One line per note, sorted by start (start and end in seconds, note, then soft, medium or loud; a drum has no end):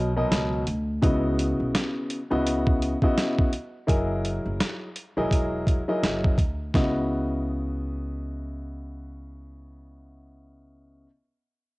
0.00 0.22 B1 loud
0.00 0.11 B2 loud
0.00 0.11 F#3 medium
0.00 0.11 A#4 medium
0.00 0.11 D#5 loud
0.16 0.63 B2 medium
0.16 0.63 F#3 medium
0.16 0.63 A#4 medium
0.16 0.64 D#5 loud
0.31 0.62 C#2 loud
0.31 snare loud
0.31 closed hi-hat medium
0.67 0.98 D2 loud
0.67 closed hi-hat medium
1.02 1.52 C#2 loud
1.02 2.19 C#3 medium
1.02 2.19 B3 medium
1.02 2.19 E4 medium
1.02 2.19 F#4 medium
1.02 2.19 D#5 loud
1.02 kick loud
1.02 closed hi-hat loud
1.39 closed hi-hat medium
1.60 1.72 B1 medium
1.75 snare loud
1.75 closed hi-hat loud
2.10 closed hi-hat medium
2.30 2.93 C#2 medium
2.30 2.95 C#3 medium
2.30 2.95 B3 medium
2.30 2.95 E4 medium
2.30 2.96 F#4 medium
2.30 2.96 D#5 loud
2.47 closed hi-hat loud
2.67 kick medium
2.82 closed hi-hat medium
3.02 3.49 C#3 medium
3.02 3.49 B3 medium
3.02 3.49 E4 medium
3.02 3.50 F#4 medium
3.02 3.50 D#5 loud
3.02 kick loud
3.18 snare loud
3.18 closed hi-hat medium
3.39 kick loud
3.53 closed hi-hat medium
3.87 4.38 F#1 loud
3.87 4.88 F#3 medium
3.87 4.88 E4 medium
3.87 4.88 G#4 medium
3.87 4.88 A#4 medium
3.87 4.88 D#5 loud
3.87 kick loud
3.87 closed hi-hat loud
4.25 closed hi-hat medium
4.46 4.58 F#1 medium
4.61 snare loud
4.61 closed hi-hat loud
4.96 closed hi-hat medium
5.17 5.79 E1 medium
5.17 5.81 F#3 medium
5.17 5.81 E4 medium
5.17 5.82 G#4 medium
5.17 5.82 A#4 medium
5.17 5.82 D#5 loud
5.31 kick medium
5.31 closed hi-hat loud
5.67 kick medium
5.67 closed hi-hat medium
5.88 6.35 F#3 medium
5.88 6.35 E4 medium
5.88 6.35 G#4 medium
5.88 6.35 A#4 medium
5.88 6.35 D#5 loud
6.03 6.34 F#1 medium
6.03 snare loud
6.03 closed hi-hat medium
6.24 kick loud
6.38 6.69 D2 medium
6.38 kick medium
6.38 closed hi-hat medium
6.74 11.06 C#2 medium
6.74 11.05 C#3 medium
6.74 11.06 B3 medium
6.74 11.06 E4 medium
6.74 11.06 F#4 medium
6.74 11.06 D#5 medium
6.74 kick loud
6.74 snare medium